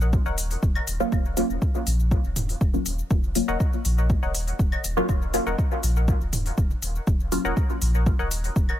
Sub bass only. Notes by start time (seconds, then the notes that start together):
Already playing: A#1
0.26 D#1
0.63 D#1
0.87 D#1
1.12 D#1
1.50 D#1
1.87 A#1
2.24 D#1
2.61 D#1
2.86 D#1
3.11 D#1
3.48 D#1
3.85 A#1
4.23 D#1
4.59 D#1
4.84 D#1
5.09 D#1
5.47 D#1
5.83 A#1
6.21 D#1
6.58 D#1
6.82 D#1
7.07 D#1
7.45 D#1
7.82 A#1
8.19 D#1
8.56 D#1